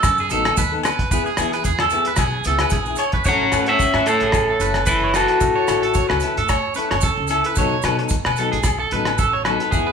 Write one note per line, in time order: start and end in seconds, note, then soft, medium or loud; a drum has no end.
0.00 0.25 F#2 medium
0.00 0.18 A4 medium
0.00 kick medium
0.00 cross-stick medium
0.00 closed hi-hat soft
0.00 maracas medium
0.04 low agogo medium
0.18 0.31 G#4 medium
0.18 maracas soft
0.30 0.52 A1 medium
0.30 0.46 F#3 medium
0.30 0.46 B3 medium
0.30 0.47 D#4 medium
0.30 0.57 A4 medium
0.30 0.44 A4 medium
0.30 closed hi-hat soft
0.30 maracas medium
0.45 0.62 B3 soft
0.45 0.62 D#4 medium
0.45 0.61 A4 medium
0.45 cross-stick medium
0.45 closed hi-hat soft
0.45 low agogo medium
0.57 0.78 D#2 medium
0.57 0.72 B4 medium
0.57 kick medium
0.57 closed hi-hat medium
0.57 maracas medium
0.72 0.89 B3 soft
0.72 0.88 D#4 soft
0.72 0.87 A4 medium
0.83 1.11 B4 medium
0.83 cross-stick medium
0.83 closed hi-hat soft
0.83 low agogo medium
0.83 maracas medium
0.99 kick medium
0.99 closed hi-hat medium
1.11 1.23 E2 medium
1.11 1.29 B3 medium
1.11 1.29 E4 medium
1.11 1.30 G#4 medium
1.11 1.26 B4 medium
1.11 kick medium
1.11 closed hi-hat soft
1.11 maracas medium
1.26 1.52 G#4 medium
1.26 maracas soft
1.37 1.59 E3 medium
1.37 1.53 B3 medium
1.37 1.54 E4 medium
1.37 cross-stick medium
1.37 closed hi-hat medium
1.37 low agogo medium
1.37 maracas medium
1.42 1.52 G#4 medium
1.53 1.70 E4 soft
1.53 1.68 G#4 medium
1.53 1.65 B4 medium
1.53 closed hi-hat medium
1.53 maracas soft
1.64 1.86 E2 medium
1.64 1.79 G#4 medium
1.64 kick medium
1.64 closed hi-hat medium
1.64 maracas medium
1.79 2.06 A4 medium
1.79 cross-stick medium
1.79 low agogo medium
1.79 maracas soft
1.90 2.10 B3 medium
1.90 2.10 E4 medium
1.90 closed hi-hat medium
1.90 maracas medium
1.95 2.11 G#4 medium
2.05 2.19 B4 medium
2.05 closed hi-hat medium
2.05 maracas soft
2.16 2.39 B1 loud
2.16 2.45 G#4 medium
2.16 kick medium
2.16 cross-stick medium
2.16 closed hi-hat soft
2.16 low agogo medium
2.16 maracas medium
2.44 2.67 C#2 medium
2.44 2.61 B3 medium
2.44 2.61 E4 medium
2.44 2.61 A4 medium
2.44 closed hi-hat medium
2.44 maracas medium
2.49 2.59 G#4 medium
2.59 2.76 G#4 medium
2.59 2.72 B4 medium
2.59 cross-stick medium
2.59 closed hi-hat medium
2.59 low agogo medium
2.59 maracas soft
2.63 2.77 E4 soft
2.70 2.93 A#1 medium
2.70 2.98 G#4 medium
2.70 kick medium
2.70 closed hi-hat medium
2.70 maracas medium
2.86 3.03 G#4 medium
2.86 maracas soft
2.90 3.04 E4 soft
2.96 3.13 C#5 medium
2.96 closed hi-hat soft
2.96 low agogo medium
2.96 maracas medium
3.12 3.25 B4 medium
3.12 kick medium
3.12 closed hi-hat medium
3.24 3.47 A1 medium
3.24 3.44 C#4 medium
3.24 3.52 C#5 medium
3.24 3.65 C#5 medium
3.24 kick medium
3.24 closed hi-hat soft
3.24 maracas medium
3.28 3.68 C#4 medium
3.28 3.45 E4 medium
3.28 3.45 A4 medium
3.28 3.69 F#5 loud
3.52 3.74 A2 medium
3.52 3.68 C#4 medium
3.52 3.68 E4 medium
3.52 3.66 A4 medium
3.52 3.68 B4 medium
3.52 cross-stick medium
3.52 closed hi-hat soft
3.52 low agogo medium
3.52 maracas medium
3.66 3.84 E4 soft
3.66 3.83 A4 soft
3.66 4.04 C#5 medium
3.66 4.09 E5 loud
3.66 3.94 E5 medium
3.66 closed hi-hat soft
3.71 4.06 C#4 medium
3.79 kick medium
3.79 closed hi-hat soft
3.79 maracas medium
3.94 4.23 A2 medium
3.94 4.07 B4 medium
3.94 cross-stick medium
3.94 low agogo medium
4.06 4.85 A3 medium
4.06 4.24 C#4 medium
4.06 4.25 E4 medium
4.06 4.84 A4 medium
4.06 4.22 A4 medium
4.06 4.84 C#5 medium
4.06 closed hi-hat soft
4.06 maracas medium
4.10 4.26 A4 medium
4.20 4.52 A1 medium
4.20 4.48 G#4 medium
4.20 closed hi-hat soft
4.32 kick medium
4.32 cross-stick medium
4.32 closed hi-hat soft
4.32 low agogo medium
4.32 maracas medium
4.50 4.61 A4 medium
4.60 5.23 F#1 medium
4.60 4.78 C#4 medium
4.60 4.78 E4 medium
4.60 4.79 A4 medium
4.60 4.87 B4 medium
4.60 closed hi-hat medium
4.60 maracas medium
4.74 cross-stick medium
4.74 closed hi-hat soft
4.74 low agogo medium
4.85 5.13 E4 medium
4.85 5.02 A4 medium
4.85 5.12 B4 medium
4.85 kick medium
4.85 closed hi-hat soft
4.85 maracas medium
4.90 5.14 E3 medium
5.04 5.14 C#5 medium
5.14 6.20 E3 medium
5.14 5.30 E4 medium
5.14 6.19 F#4 medium
5.14 6.19 A4 medium
5.14 5.27 A4 medium
5.14 5.40 B4 medium
5.14 cross-stick medium
5.14 closed hi-hat soft
5.14 low agogo medium
5.14 maracas medium
5.28 5.46 E4 soft
5.28 5.44 A4 soft
5.28 closed hi-hat soft
5.40 5.53 A1 medium
5.40 muted clean electric guitar stroke medium
5.40 kick medium
5.40 closed hi-hat soft
5.40 maracas medium
5.55 5.82 C#5 medium
5.68 6.01 A1 medium
5.68 5.83 C#4 medium
5.68 5.84 E4 medium
5.68 5.82 A4 medium
5.68 cross-stick medium
5.68 closed hi-hat medium
5.68 low agogo medium
5.68 maracas medium
5.82 5.99 E4 soft
5.82 5.94 A4 medium
5.82 5.98 A4 medium
5.82 closed hi-hat soft
5.94 6.08 C#5 medium
5.94 kick medium
5.94 closed hi-hat medium
5.94 maracas loud
6.09 6.20 C#2 medium
6.09 6.35 B4 medium
6.09 cross-stick medium
6.09 low agogo medium
6.20 6.40 C#4 medium
6.20 6.40 E4 medium
6.20 closed hi-hat medium
6.20 maracas medium
6.25 6.41 A4 medium
6.37 6.59 A2 medium
6.37 6.49 A4 medium
6.37 closed hi-hat medium
6.48 6.75 C#5 medium
6.48 kick medium
6.48 cross-stick medium
6.48 closed hi-hat medium
6.48 low agogo medium
6.48 maracas medium
6.74 6.93 C#4 medium
6.74 6.94 E4 medium
6.74 6.90 B4 medium
6.74 closed hi-hat medium
6.74 maracas medium
6.79 6.95 A4 medium
6.91 7.01 F#1 medium
6.91 7.03 C#5 medium
6.91 cross-stick medium
6.91 closed hi-hat soft
6.91 low agogo medium
7.01 7.15 A1 medium
7.01 7.29 A4 medium
7.01 kick medium
7.01 closed hi-hat medium
7.01 maracas medium
7.18 7.39 C#2 medium
7.27 7.45 C#4 medium
7.27 7.45 E4 medium
7.27 7.45 A4 medium
7.27 closed hi-hat soft
7.27 low agogo medium
7.27 maracas medium
7.32 7.44 A4 medium
7.44 7.58 A4 medium
7.44 7.57 B4 medium
7.44 closed hi-hat medium
7.48 7.59 E4 soft
7.55 7.78 B1 medium
7.55 7.75 F#3 medium
7.55 7.75 B3 medium
7.55 7.75 D#4 medium
7.55 7.84 C#5 medium
7.55 kick medium
7.55 closed hi-hat soft
7.55 maracas medium
7.60 7.76 A4 medium
7.82 8.05 B2 medium
7.82 7.99 F#3 medium
7.82 7.99 B4 medium
7.82 cross-stick medium
7.82 closed hi-hat soft
7.82 low agogo medium
7.82 maracas medium
7.86 8.00 B3 medium
7.86 7.99 D#4 medium
7.86 7.98 A4 medium
7.99 8.15 B3 soft
7.99 8.15 D#4 medium
7.99 8.14 A4 medium
7.99 muted clean electric guitar stroke medium
7.99 closed hi-hat soft
8.09 kick medium
8.09 closed hi-hat soft
8.09 maracas medium
8.25 8.54 B2 medium
8.25 8.38 B4 medium
8.25 cross-stick medium
8.25 low agogo medium
8.36 8.56 F#3 medium
8.36 8.56 B3 medium
8.36 8.51 A4 medium
8.36 closed hi-hat soft
8.36 maracas medium
8.41 8.57 D#4 medium
8.41 8.57 A4 medium
8.52 8.83 B1 medium
8.52 8.78 G#4 medium
8.52 closed hi-hat soft
8.63 kick medium
8.63 cross-stick medium
8.63 closed hi-hat soft
8.63 low agogo medium
8.63 maracas medium
8.80 8.91 A4 medium
8.91 9.55 A1 medium
8.91 9.10 F#3 medium
8.91 9.10 B3 medium
8.91 9.11 D#4 medium
8.91 9.18 B4 medium
8.91 closed hi-hat medium
8.96 9.11 A4 medium
9.05 cross-stick medium
9.05 closed hi-hat soft
9.05 low agogo medium
9.18 9.33 A4 medium
9.18 kick medium
9.18 closed hi-hat soft
9.18 maracas medium
9.33 9.44 C#5 medium
9.45 9.61 F#3 medium
9.45 9.62 B3 medium
9.45 9.61 D#4 medium
9.45 9.60 A4 medium
9.45 9.71 B4 medium
9.45 cross-stick medium
9.45 closed hi-hat soft
9.45 low agogo medium
9.60 9.71 B3 soft
9.60 9.73 D#4 soft
9.60 9.73 A4 medium
9.60 closed hi-hat soft
9.71 9.84 E2 medium
9.71 9.90 B3 medium
9.71 9.91 E4 medium
9.71 9.86 G#4 medium
9.71 9.91 G#4 medium
9.71 kick medium
9.71 closed hi-hat soft
9.71 maracas medium
9.87 9.92 B4 medium